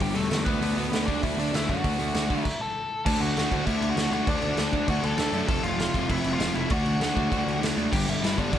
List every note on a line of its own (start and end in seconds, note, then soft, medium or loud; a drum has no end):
0.00 0.14 G1 medium
0.00 0.15 G2 loud
0.00 0.15 D3 loud
0.00 0.15 G3 loud
0.00 0.15 G4 medium
0.00 0.15 G5 medium
0.00 kick medium
0.00 open hi-hat medium
0.14 0.28 E1 medium
0.14 0.30 G2 medium
0.14 0.30 D3 medium
0.14 0.30 G3 medium
0.14 0.44 A3 medium
0.14 0.45 A4 medium
0.14 open hi-hat medium
0.30 0.44 E2 medium
0.30 0.45 G2 medium
0.30 0.45 D3 loud
0.30 0.46 G3 medium
0.30 snare loud
0.30 open hi-hat medium
0.45 0.60 D2 medium
0.45 0.62 D3 medium
0.45 0.61 A3 medium
0.45 1.03 B3 medium
0.45 0.61 D4 loud
0.45 1.09 B4 medium
0.45 kick loud
0.45 open hi-hat medium
0.61 0.75 D2 medium
0.61 0.78 D3 medium
0.61 0.78 A3 medium
0.61 0.78 D4 loud
0.61 open hi-hat medium
0.76 0.90 D2 medium
0.76 0.94 D3 medium
0.76 0.93 A3 medium
0.76 0.93 D4 medium
0.76 open hi-hat medium
0.92 1.05 D2 medium
0.92 1.08 D3 medium
0.92 1.08 A3 loud
0.92 1.08 D4 loud
0.92 snare loud
0.92 open hi-hat medium
1.06 1.21 D2 medium
1.06 1.24 D3 medium
1.06 1.23 A3 medium
1.06 1.21 D4 medium
1.06 1.23 D4 medium
1.06 1.23 D5 medium
1.06 kick medium
1.06 open hi-hat medium
1.22 1.36 D2 medium
1.22 1.37 D3 medium
1.22 1.38 A3 loud
1.22 1.38 D4 loud
1.22 1.37 E4 medium
1.22 1.38 E5 medium
1.22 kick medium
1.22 open hi-hat medium
1.37 1.51 D2 medium
1.37 1.53 D3 medium
1.37 1.53 A3 medium
1.37 1.53 D4 loud
1.37 1.53 D4 medium
1.37 1.55 D5 medium
1.37 open hi-hat medium
1.53 1.66 D2 medium
1.53 1.67 D3 medium
1.53 1.68 A3 loud
1.53 1.68 D4 loud
1.53 1.69 E4 medium
1.53 1.70 E5 medium
1.53 snare loud
1.53 open hi-hat medium
1.68 1.82 F#2 medium
1.68 1.84 D3 medium
1.68 1.83 A3 medium
1.68 1.83 D4 loud
1.68 2.72 F#4 medium
1.68 2.41 F#5 medium
1.68 kick medium
1.68 open hi-hat soft
1.84 1.97 D2 medium
1.84 1.98 D3 medium
1.84 1.98 A3 medium
1.84 1.99 D4 loud
1.84 kick medium
1.84 open hi-hat medium
1.99 2.12 D2 medium
1.99 2.14 D3 medium
1.99 2.14 A3 medium
1.99 2.13 D4 medium
1.99 open hi-hat medium
2.14 2.27 D2 medium
2.14 2.29 D3 medium
2.14 2.29 A3 medium
2.14 2.29 D4 loud
2.14 snare loud
2.14 open hi-hat medium
2.30 2.44 D3 medium
2.30 2.43 D3 medium
2.30 2.44 A3 medium
2.30 2.44 D4 medium
2.30 kick medium
2.30 open hi-hat soft
2.41 2.72 E5 medium
2.45 kick medium
2.45 crash medium
2.61 3.04 A4 medium
2.61 3.05 A5 medium
3.06 3.15 D2 medium
3.06 3.36 D3 medium
3.06 3.37 A3 medium
3.06 3.37 D4 loud
3.06 3.20 A4 medium
3.06 3.21 A5 loud
3.06 kick loud
3.06 crash loud
3.06 crash medium
3.20 3.30 D2 medium
3.20 3.64 F#4 medium
3.20 3.66 F#5 loud
3.20 crash medium
3.36 3.45 D2 medium
3.36 3.52 D3 medium
3.36 3.53 A3 medium
3.36 3.51 D4 medium
3.36 snare loud
3.36 crash medium
3.51 3.60 D2 medium
3.51 3.66 D3 medium
3.51 3.67 A3 medium
3.51 3.67 D4 medium
3.51 kick medium
3.51 crash medium
3.66 3.76 D2 medium
3.66 3.96 D3 loud
3.66 3.97 A3 loud
3.66 3.97 D4 loud
3.66 3.88 E4 medium
3.66 3.90 E5 medium
3.66 kick medium
3.66 crash medium
3.81 3.91 D2 medium
3.81 crash medium
3.90 4.11 F#4 medium
3.90 4.12 F#5 loud
3.96 4.05 D2 medium
3.96 4.14 D3 medium
3.96 4.13 A3 medium
3.96 4.12 D4 medium
3.96 snare loud
3.96 crash medium
4.11 4.21 D2 medium
4.11 4.27 D3 medium
4.11 4.28 A3 medium
4.11 4.28 D4 loud
4.11 4.28 F#4 medium
4.11 4.28 F#5 medium
4.11 crash medium
4.27 4.36 D2 loud
4.27 4.57 D3 medium
4.27 4.58 A3 loud
4.27 4.58 D4 loud
4.27 4.57 D4 medium
4.27 4.58 D5 medium
4.27 kick loud
4.27 crash medium
4.42 4.51 D2 medium
4.42 crash medium
4.57 4.67 D2 medium
4.57 4.72 D3 medium
4.57 4.73 A3 loud
4.57 4.71 D4 medium
4.57 4.87 D4 medium
4.57 4.87 D5 medium
4.57 snare loud
4.57 crash medium
4.72 4.82 D2 medium
4.72 4.87 D3 medium
4.72 4.89 A3 medium
4.72 4.88 D4 medium
4.72 kick medium
4.72 crash medium
4.88 4.97 D2 medium
4.88 5.18 D3 loud
4.88 5.19 A3 loud
4.88 5.19 D4 loud
4.88 5.03 F#4 medium
4.88 5.05 F#5 medium
4.88 kick medium
4.88 crash medium
5.03 5.12 D2 medium
5.03 5.46 A4 medium
5.03 5.47 A5 loud
5.03 crash medium
5.17 5.27 D2 loud
5.17 5.35 D3 medium
5.17 5.35 A3 medium
5.17 5.33 D4 medium
5.17 snare loud
5.17 crash medium
5.32 5.42 F#2 medium
5.32 5.49 D3 medium
5.32 5.49 A3 medium
5.32 5.48 D4 loud
5.32 crash medium
5.48 5.58 F1 loud
5.48 5.78 F2 medium
5.48 5.79 C3 loud
5.48 5.79 F3 loud
5.48 5.63 A4 medium
5.48 5.63 A5 medium
5.48 kick loud
5.48 crash medium
5.63 5.73 F1 medium
5.63 6.06 F4 medium
5.63 6.11 F5 medium
5.63 crash medium
5.78 5.87 F1 loud
5.78 5.93 F2 loud
5.78 5.93 C3 medium
5.78 5.92 F3 medium
5.78 snare loud
5.78 crash medium
5.94 6.04 F1 medium
5.94 6.08 F2 medium
5.94 6.08 C3 medium
5.94 6.09 F3 loud
5.94 kick medium
5.94 crash medium
6.09 6.18 F1 medium
6.09 6.38 F2 loud
6.09 6.38 C3 loud
6.09 6.39 F3 loud
6.09 6.32 E4 medium
6.09 6.34 E5 medium
6.09 kick medium
6.09 crash medium
6.24 6.34 F1 medium
6.24 crash medium
6.33 6.54 F4 medium
6.33 6.56 F5 medium
6.39 6.49 F1 loud
6.39 6.54 F2 medium
6.39 6.54 C3 medium
6.39 6.53 F3 medium
6.39 snare loud
6.39 crash medium
6.55 6.64 F1 medium
6.55 6.70 F2 medium
6.55 6.69 C3 medium
6.55 6.69 F3 medium
6.55 6.69 E4 medium
6.55 6.71 E5 medium
6.55 crash medium
6.70 6.80 D2 loud
6.70 7.00 D3 medium
6.70 7.01 A3 loud
6.70 7.01 D4 loud
6.70 7.58 F#4 medium
6.70 7.59 F#5 medium
6.70 kick loud
6.70 crash medium
6.86 6.95 D2 medium
6.86 crash medium
7.00 7.09 D2 loud
7.00 7.15 D3 medium
7.00 7.14 A3 medium
7.00 7.14 D4 loud
7.00 snare loud
7.00 crash medium
7.15 7.25 D2 medium
7.15 7.30 D3 medium
7.15 7.30 A3 medium
7.15 7.30 D4 loud
7.15 kick medium
7.15 crash medium
7.31 7.41 D2 medium
7.31 7.60 D3 loud
7.31 7.60 A3 loud
7.31 7.61 D4 loud
7.31 kick medium
7.31 crash medium
7.47 7.56 D2 medium
7.47 crash medium
7.60 7.70 D2 medium
7.60 7.76 D3 medium
7.60 7.76 A3 medium
7.60 7.76 D4 medium
7.60 snare loud
7.60 crash medium
7.76 7.86 D2 medium
7.76 7.91 D3 medium
7.76 7.91 A3 medium
7.76 7.91 D4 loud
7.76 crash medium
7.92 8.05 G1 loud
7.92 8.23 G2 medium
7.92 8.23 D3 loud
7.92 8.24 G3 loud
7.92 8.06 G4 medium
7.92 8.10 G5 medium
7.92 kick loud
7.92 crash loud
7.92 crash medium
8.07 8.20 G1 medium
8.07 8.37 E4 medium
8.07 8.40 E5 medium
8.07 crash medium
8.22 8.35 G1 loud
8.22 8.38 G2 medium
8.22 8.38 D3 medium
8.22 8.37 G3 loud
8.22 snare loud
8.22 crash medium
8.38 8.51 G1 medium
8.38 8.53 G2 medium
8.38 8.53 D3 medium
8.38 8.54 G3 loud
8.38 8.59 D4 medium
8.38 8.59 D5 medium
8.38 kick medium
8.38 crash medium
8.53 8.59 E2 medium
8.53 8.59 G2 medium
8.53 8.59 D3 loud
8.53 8.59 G3 loud
8.53 kick medium
8.53 crash medium